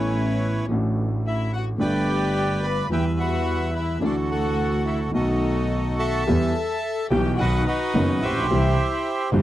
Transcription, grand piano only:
Already playing: A1 A2 E3 B3 C#4 A4
0.68 A1 A2 E3 A3 D4 F#4
1.78 G1 G2 D3 A3 B3 G4
2.90 E2 E3 G3 B3
2.94 E4
4.00 D2 D3 E3 A3 D4
4.04 F#4
5.11 B1 B2 D#3 A3 B3 F#4
6.27 E2 E3 G3 B3 G4
7.11 B1 B2 E3 G3 B3 G4
7.39 B1 B2 D#3 F#3 B3 F#4
7.94 F#1 F#2 D#3 F#3 B3 F#4
8.30 A1
8.37 A#1
8.43 B1
8.50 C2 C3 E3 G3 C4 G4
9.33 G1 G2 E3 G3 C4 G4

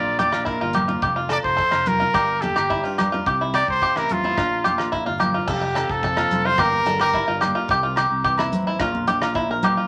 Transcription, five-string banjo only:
Already playing: F4
0.19 G4
0.32 F4
0.45 E4
0.61 F4
0.75 G4
0.88 F4
1.02 G4
1.16 F4
1.29 A4
1.57 A4
1.71 F4
2.00 F4
2.14 G4
2.42 A4
2.56 G4
2.70 E4
2.84 F4
2.98 G4
3.12 F4
3.27 G4
3.41 E4
3.54 G4
3.82 G4
3.96 E4
4.25 E4
4.38 F4
4.64 G4
4.78 F4
4.92 E4
5.06 F4
5.20 G4
5.34 F4
5.47 A4
5.61 muted five-string banjo stroke
5.75 A4
6.04 A4
6.17 F4
6.45 F4
6.59 G4
6.86 A4
7.01 G4
7.14 E4
7.28 F4
7.41 G4
7.55 F4
7.71 G4
7.83 F4
7.97 G4
8.24 G4
8.39 E4
8.67 E4
8.80 F4
9.08 G4
9.22 F4
9.35 E4
9.51 A#4
9.64 G4
9.77 F4

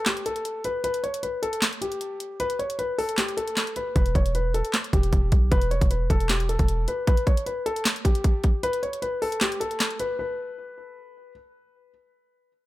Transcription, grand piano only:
0.06 G4
0.26 A4
0.65 B4
0.84 B4
1.04 C#5
1.23 B4
1.43 A4
1.81 G4
2.40 B4
2.59 C#5
2.79 B4
2.98 A4
3.18 G4
3.37 A4
3.76 B4
3.96 B4
4.15 C#5
4.35 B4
4.54 A4
4.93 G4
5.52 B4
5.71 C#5
5.91 B4
6.10 A4
6.30 G4
6.49 A4
6.88 B4
7.07 B4
7.27 C#5
7.46 B4
7.66 A4
8.05 G4
8.63 B4
8.83 C#5
9.02 B4
9.22 A4
9.41 G4
9.60 A4
10.00 B4
10.19 B4

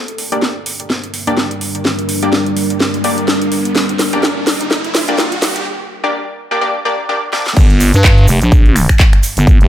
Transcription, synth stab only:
0.32 A#3 D4 G4 D5
1.27 A#3 D4 G4 D5
2.23 A#3 D4 G4 D5
3.04 A#3 D4 G4 D5
4.13 A#3 D4 G4 D5
5.08 A#3 D4 G4 D5
6.04 A#3 D4 G4 D5
6.51 A#3 D4 G4 D5
6.61 A#3 D4 G4 D5
6.85 A#3 D4 G4 D5
7.09 A#3 D4 G4 D5
7.33 A#3 D4 G4 D5

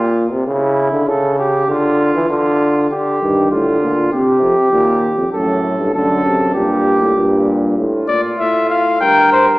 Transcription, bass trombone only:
3.22 G2
3.52 A2
3.82 A#2
4.12 C3
4.41 F2
4.72 D#2
5.18 F2
5.33 F#2
5.79 G2
5.94 F#2
6.55 G2
7.01 A2
7.16 G2
7.78 A2
8.09 A#2
8.39 A2
9.01 G2

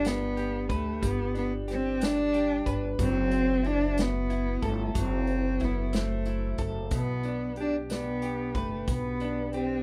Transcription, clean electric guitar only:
Already playing: D3 G3 G4
0.04 D4
0.37 G4
0.69 B4
1.02 G3
1.35 D4
1.68 G4
2.00 D4
2.33 G4
2.66 B4
2.99 F#3
3.31 C4
3.63 E4
4.30 E4
4.62 A4
4.95 F#3
5.61 E4
5.93 C4
6.26 E4
6.59 A4
6.92 B2
7.25 D4
7.57 G4
7.90 D4
8.22 G4
8.55 B4
9.21 D4
9.54 G4

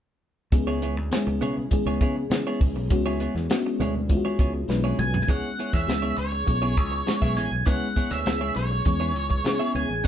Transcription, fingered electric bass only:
0.52 C#2
0.97 D2
1.27 C#2
1.42 C#3
1.86 C#2
2.01 C#3
2.30 C#3
2.61 C#2
2.75 B1
2.90 C#2
3.35 E2
3.80 D2
4.39 C#2
4.68 B1
4.98 B1
5.28 C#2
5.73 E2
5.87 C#2
6.17 C#2
6.48 B1
6.77 C#2
7.22 B1
7.37 A1
7.52 B1
7.67 C#2
8.11 D2
8.26 C#2
8.56 B1
8.86 E2
9.15 C#2
9.45 C#3
9.75 C#2
9.89 A1
10.04 B1

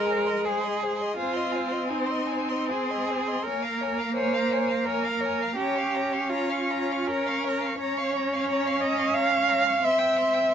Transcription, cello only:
Already playing: A#4
0.45 G#4
1.17 F4
1.90 D#4
2.70 G#4
3.44 A#4
4.15 C5
4.86 A#4
5.56 G4
6.30 F4
7.08 A#4
7.78 C#5
8.80 D#5
9.14 F5
9.84 E5

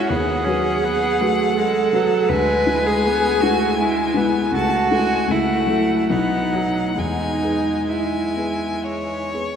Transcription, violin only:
0.10 F#5
2.31 G#5
4.55 A5
4.93 G#5
5.32 F#5
6.11 F#5
6.98 G#5
7.89 G#5
8.86 C#5

